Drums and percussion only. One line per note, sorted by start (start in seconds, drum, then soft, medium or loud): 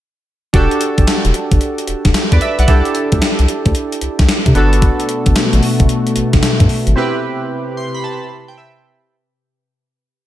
0.54 kick loud
0.54 closed hi-hat medium
0.71 closed hi-hat soft
0.81 closed hi-hat medium
0.98 kick loud
0.98 closed hi-hat medium
1.07 snare loud
1.07 closed hi-hat medium
1.25 closed hi-hat medium
1.34 closed hi-hat medium
1.51 kick loud
1.51 closed hi-hat soft
1.61 closed hi-hat medium
1.78 closed hi-hat soft
1.88 closed hi-hat medium
2.05 kick loud
2.05 snare medium
2.05 closed hi-hat soft
2.14 snare loud
2.14 closed hi-hat medium
2.32 kick medium
2.32 closed hi-hat medium
2.41 closed hi-hat medium
2.59 closed hi-hat soft
2.68 kick loud
2.68 closed hi-hat medium
2.85 closed hi-hat soft
2.95 closed hi-hat medium
3.12 kick loud
3.12 closed hi-hat medium
3.22 snare loud
3.22 closed hi-hat medium
3.39 closed hi-hat medium
3.48 closed hi-hat medium
3.66 kick loud
3.66 closed hi-hat soft
3.75 closed hi-hat medium
3.92 closed hi-hat medium
4.01 closed hi-hat medium
4.19 kick medium
4.19 snare medium
4.19 closed hi-hat soft
4.29 snare loud
4.29 closed hi-hat medium
4.46 kick medium
4.46 closed hi-hat medium
4.55 closed hi-hat medium
4.73 closed hi-hat medium
4.82 kick loud
4.82 closed hi-hat medium
5.00 closed hi-hat medium
5.09 closed hi-hat medium
5.26 kick loud
5.26 closed hi-hat medium
5.36 snare loud
5.36 closed hi-hat medium
5.53 closed hi-hat medium
5.63 open hi-hat medium
5.80 kick loud
5.80 closed hi-hat soft
5.89 closed hi-hat medium
6.07 closed hi-hat medium
6.16 closed hi-hat medium
6.33 kick medium
6.33 snare medium
6.33 closed hi-hat soft
6.43 snare loud
6.43 closed hi-hat medium
6.60 kick medium
6.60 closed hi-hat medium
6.69 open hi-hat medium
6.87 closed hi-hat medium